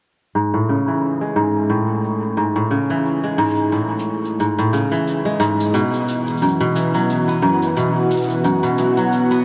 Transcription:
0.35 kora G#2, cabasa
0.54 kora A2, cabasa
0.69 kora C#3, cabasa
0.88 kora E3, cabasa
1.03 cabasa
1.21 kora G#3
1.36 kora G#2, cabasa
1.56 cabasa
1.70 kora A2, cabasa
1.89 cabasa
2.04 cabasa
2.24 cabasa
2.37 kora G#2, cabasa
2.56 kora A2
2.71 kora C#3, cabasa
2.90 kora E3, cabasa
3.06 cabasa
3.23 kora G#3, cabasa
3.38 kora G#2, cabasa
3.42 cabasa
3.45 cabasa
3.48 cabasa
3.51 cabasa
3.55 cabasa
3.58 cabasa
3.72 kora A2, cabasa
3.99 cabasa
4.25 cabasa
4.40 kora G#2, cabasa
4.59 kora A2, cabasa
4.73 kora C#3, cabasa
4.92 kora E3, cabasa
5.08 cabasa
5.25 kora G#3
5.40 kora G#2, cabasa
5.60 cabasa
5.74 kora B2, analog synth pad E3, cabasa
5.94 cabasa
6.08 cabasa
6.27 cabasa
6.38 analog synth pad B3, cabasa
6.42 kora F#2, cabasa
6.49 cabasa
6.54 analog synth pad F#4
6.61 kora B2
6.75 kora E3, cabasa
6.89 analog synth pad F#5
6.94 kora F#3, cabasa
7.10 cabasa
7.28 kora B3, cabasa
7.42 kora F#2
7.62 cabasa
7.77 kora B2, cabasa
8.11 cabasa
8.17 cabasa
8.22 cabasa
8.30 cabasa
8.44 kora F#2, cabasa
8.63 kora B2, cabasa
8.78 kora E3, cabasa
8.97 kora F#3, cabasa
9.13 cabasa
9.31 kora B3, cabasa

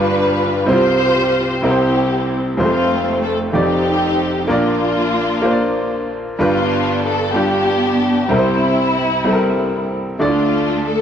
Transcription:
Already playing: grand piano G1 G2 G3 D4 F4 B4, string section D4 F4 B4
0.66 grand piano C2 C3 G3 C4 E4 C5, string section F4 G4
0.70 grand piano F4, string section C5
1.62 grand piano C2 C3 G3 C4 E4 A#4, string section C4 E4 G4
1.71 grand piano C5
2.57 grand piano F1 F2 G#3 C4 F4 C5, string section A3 C4 F4
2.64 grand piano A3
3.24 string section A4
3.52 grand piano F1 F2 A3 D#4 G4 D5, string section C4 D#4
3.57 string section G4
4.47 grand piano A#1 A#2 A#3 D4 F4 D5, string section A#3 D4 F4
5.42 grand piano A#3 D4 F4 C5
5.51 grand piano D5
6.39 grand piano G1 G2 G3 D4 F4 B4, string section B3 D4 F4
7.04 string section A4
7.34 grand piano G3 D4 F4 G4, string section B3 D4 G4
8.29 grand piano C2 C3 G3 C4 E4 A#4, string section G3 C4 E4
8.38 grand piano C5
9.24 grand piano G3 C4 E4 A4
9.33 grand piano A#4
10.19 grand piano D2 D3 A3 D4 E4 D5, string section A3 D4 F4
10.27 grand piano F4
10.86 string section A4

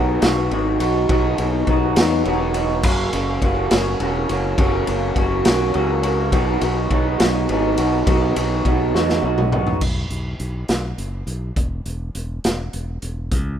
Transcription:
Already playing: fingered electric bass B1, clean electric guitar B2 F#3 B3 D#4 F#4
0.21 fingered electric bass B1, clean electric guitar B3 D#4 F#4, snare, ride
0.50 fingered electric bass G#1, clean electric guitar F#3 B3 D#4 F#4, ride
0.80 fingered electric bass B1, clean electric guitar B3 D#4 F#4, ride
1.09 fingered electric bass B1, clean electric guitar B2 F#3 B3 D#4 F#4, kick, ride
1.38 fingered electric bass B1, clean electric guitar B3 D#4 F#4, ride
1.67 fingered electric bass B1, clean electric guitar F#3 B3 D#4 F#4, kick, ride
1.96 fingered electric bass E2, clean electric guitar B3 D#4 F#4, snare, ride
2.25 fingered electric bass E1, clean electric guitar F#3 B3 D#4 F#4, ride
2.54 clean electric guitar B3 D#4 F#4, ride
2.83 fingered electric bass F#1, clean electric guitar F#2 C#3 F#3 A#3 C#4 F#4, kick, crash
3.12 fingered electric bass F#1, clean electric guitar F#3 A#3 C#4 F#4, ride
3.41 fingered electric bass F#1, clean electric guitar F#3 A#3 C#4 F#4, kick, ride
3.71 fingered electric bass F#1, clean electric guitar F#3 A#3 C#4 F#4, snare, ride
4.00 fingered electric bass E1, clean electric guitar F#3 A#3 C#4 F#4, ride
4.29 fingered electric bass F#1, clean electric guitar F#3 A#3 C#4 F#4, ride
4.58 fingered electric bass F#1, clean electric guitar F#2 C#3 F#3 A#3 C#4 F#4, kick, ride
4.87 fingered electric bass F#1, clean electric guitar F#3 A#3 C#4 F#4, ride
5.15 fingered electric bass F#1, clean electric guitar F#3 A#3 C#4 F#4, kick, ride
5.45 fingered electric bass B1, clean electric guitar F#3 A#3 C#4 F#4, snare, ride
5.74 fingered electric bass C#2, clean electric guitar F#3 A#3 C#4 F#4, ride
6.03 clean electric guitar F#3 A#3 C#4 F#4, ride
6.31 fingered electric bass B1, clean electric guitar B2 F#3 B3 D#4 F#4, kick, ride
6.61 fingered electric bass B1, clean electric guitar B3 D#4 F#4, ride
6.90 fingered electric bass B1, clean electric guitar F#3 B3 D#4 F#4, kick, ride
7.19 fingered electric bass B1, clean electric guitar B3 D#4 F#4, snare, ride
7.49 fingered electric bass G#1, clean electric guitar F#3 B3 D#4 F#4, ride
7.77 fingered electric bass B1, clean electric guitar B3 D#4 F#4, ride
8.06 fingered electric bass B1, clean electric guitar B2 F#3 B3 D#4 F#4, kick, ride
8.36 fingered electric bass B1, clean electric guitar B3 D#4 F#4, ride
8.65 fingered electric bass B1, clean electric guitar F#3 B3 D#4 F#4, kick, ride
8.94 fingered electric bass E2, clean electric guitar B3 D#4 F#4, snare
9.10 snare
9.22 fingered electric bass B1, clean electric guitar F#3 B3 D#4 F#4
9.38 mid tom
9.52 clean electric guitar B3 D#4 F#4, mid tom
9.67 floor tom
9.81 fingered electric bass B1, kick, crash
10.10 fingered electric bass B1, closed hi-hat
10.40 fingered electric bass B1, closed hi-hat
10.68 fingered electric bass B1, snare, closed hi-hat
10.98 fingered electric bass F#1, closed hi-hat
11.27 fingered electric bass B1, closed hi-hat
11.56 fingered electric bass E1, kick, closed hi-hat
11.86 fingered electric bass E1, closed hi-hat
12.15 fingered electric bass E1, closed hi-hat
12.44 fingered electric bass E1, snare, closed hi-hat
12.73 fingered electric bass E1, closed hi-hat
13.02 fingered electric bass E1, closed hi-hat
13.32 fingered electric bass C#2, kick, closed hi-hat

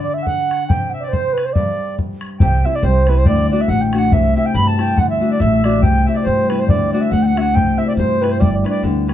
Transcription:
Already playing: harp D3
0.03 flute D5
0.09 accordion D5
0.14 flute E5, accordion E5
0.23 flute F#5, bodhran
0.28 accordion F#5
0.51 accordion F#5, bodhran
0.68 harp C3, flute G5, accordion G5, bodhran
0.90 accordion E5, flute F#5
1.00 flute D5, accordion D5
1.08 flute C5, accordion C5
1.13 bodhran
1.33 flute B4, accordion B4
1.38 bodhran
1.45 flute C5, accordion C5
1.53 harp G2, flute D5, accordion D5, bodhran
1.99 bodhran
2.21 bodhran
2.39 upright bass C2, harp C3, accordion G5, bodhran
2.43 flute G5
2.64 harp C4 E4 G4, accordion E5, flute E5
2.74 accordion D5, flute D5
2.83 upright bass C2, harp G3, accordion C5, flute C5, bodhran
3.04 harp C4, accordion B4 C5, bodhran
3.09 harp E4 G4, flute B4
3.17 accordion C5, flute C5
3.25 upright bass D2, harp D3, accordion D5, flute D5, bodhran
3.51 harp A3 D4 F#4, flute D5, accordion D5
3.60 accordion E5, flute E5
3.68 upright bass A1, harp A3, accordion F#5, flute F#5, bodhran
3.81 flute G5
3.93 harp A3 D4 F#4, bodhran
3.98 accordion F#5, flute F#5
4.12 upright bass C2, harp C3, accordion E5, flute E5, bodhran
4.36 harp C4 E4 G4, accordion E5, flute E5
4.45 accordion G5, flute G5
4.54 upright bass G2, harp G3, accordion B5, flute B5, bodhran
4.67 accordion A5, flute A5
4.78 harp C4 E4 G4, flute G5, bodhran
4.96 upright bass D2, harp D3, accordion F#5, flute F#5, bodhran
5.10 flute E5, accordion E5
5.20 harp A3 D4 F#4
5.31 accordion D5, flute D5
5.39 upright bass A1, harp A3, accordion E5, flute E5, bodhran
5.64 harp A3 D4 F#4, flute D5, bodhran
5.82 upright bass C2, harp C3, accordion G5, flute G5, bodhran
6.06 harp C4 E4 G4, accordion E5, flute E5
6.14 accordion D5, flute D5
6.24 upright bass G2, harp G3, accordion C5, flute C5, bodhran
6.49 harp C4 E4 G4, accordion B4, flute B4, bodhran
6.59 accordion C5, flute C5
6.68 upright bass D2, harp D3, flute D5, accordion D5, bodhran
6.93 harp A3 D4 F#4, accordion D5, flute D5
7.01 flute E5, accordion E5
7.11 upright bass D2, harp A3, flute F#5, accordion F#5, bodhran
7.23 flute G5
7.27 flute F#5, accordion F#5
7.36 harp A3 D4 F#4, flute E5, accordion F#5, bodhran
7.41 flute F#5
7.53 upright bass C2, harp C3, accordion G5, flute G5, bodhran
7.77 harp C4 E4 G4, flute E5, accordion E5
7.87 flute D5, accordion D5
7.97 upright bass G2, harp G3, flute C5, accordion C5, bodhran
8.21 harp C4 E4 G4, accordion B4, flute B4, bodhran
8.31 accordion C5, flute C5
8.39 upright bass G1, harp G3, accordion C5 D5, flute D5, bodhran
8.54 flute D5
8.64 harp D4 G4 B4, bodhran
8.69 flute D5, accordion D5
8.83 upright bass D2, harp D3, bodhran
9.07 harp D4 G4 B4, bodhran

